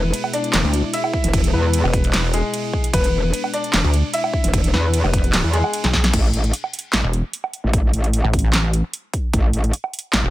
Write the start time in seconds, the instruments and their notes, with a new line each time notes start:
Already playing: wobble bass E1, analog synth pad B2 G#3 E4, grand piano B3 B4
0.14 closed hi-hat, crash
0.24 low woodblock
0.33 grand piano D4 D5, closed hi-hat
0.44 closed hi-hat
0.54 wobble bass E1, snare, clap, closed hi-hat, crash
0.64 wobble bass D2
0.73 closed hi-hat
0.93 grand piano E4 E5, closed hi-hat, crash
1.04 low woodblock
1.13 kick
1.24 wobble bass E1, closed hi-hat
1.33 kick, closed hi-hat, crash
1.44 closed hi-hat
1.53 wobble bass E2, grand piano B3 B4
1.73 closed hi-hat, crash
1.84 wobble bass E1, low woodblock
1.93 kick, closed hi-hat
2.04 closed hi-hat
2.14 snare, clap, closed hi-hat, crash
2.33 grand piano G#3 G#4, closed hi-hat
2.54 closed hi-hat, crash
2.73 kick
2.84 closed hi-hat
2.93 wobble bass E1, grand piano B3 B4, analog synth pad D4, kick, closed hi-hat, crash
3.04 closed hi-hat
3.13 wobble bass E1
3.33 closed hi-hat, crash
3.44 low woodblock
3.53 grand piano D4 D5, closed hi-hat
3.64 closed hi-hat
3.73 wobble bass E1, snare, clap, closed hi-hat, crash
3.84 wobble bass D2
3.94 closed hi-hat
4.13 grand piano E4 E5, closed hi-hat, crash
4.24 low woodblock
4.33 kick
4.44 wobble bass E1, closed hi-hat
4.54 kick, closed hi-hat, crash
4.64 closed hi-hat
4.73 wobble bass E2, grand piano B3 B4, snare
4.94 closed hi-hat, crash
5.04 wobble bass F1, low woodblock
5.14 kick, closed hi-hat
5.24 closed hi-hat
5.33 snare, clap, closed hi-hat, crash
5.44 wobble bass E2
5.53 grand piano G#3 G#4, closed hi-hat
5.64 low woodblock
5.73 closed hi-hat, crash
5.84 wobble bass B1, snare, closed hi-hat
5.93 kick, snare
6.04 snare, closed hi-hat
6.13 wobble bass A1, kick, closed hi-hat, crash
6.33 wobble bass A1, closed hi-hat
6.44 closed hi-hat
6.53 closed hi-hat
6.64 low woodblock
6.73 closed hi-hat
6.79 closed hi-hat
6.93 wobble bass A1, snare, clap, closed hi-hat
7.04 wobble bass E1
7.13 closed hi-hat
7.33 closed hi-hat
7.44 low woodblock
7.53 closed hi-hat
7.64 wobble bass A1
7.73 kick, closed hi-hat
7.93 wobble bass A1, closed hi-hat
8.04 closed hi-hat
8.13 closed hi-hat
8.24 wobble bass A1, low woodblock
8.33 kick, closed hi-hat
8.39 closed hi-hat
8.53 snare, clap, closed hi-hat
8.73 closed hi-hat
8.93 closed hi-hat
9.13 kick, closed hi-hat
9.33 wobble bass A1, kick, closed hi-hat
9.53 wobble bass A1, closed hi-hat
9.64 closed hi-hat
9.73 closed hi-hat
9.84 low woodblock
9.93 closed hi-hat
9.99 closed hi-hat
10.13 wobble bass A1, snare, clap, closed hi-hat
10.24 wobble bass E1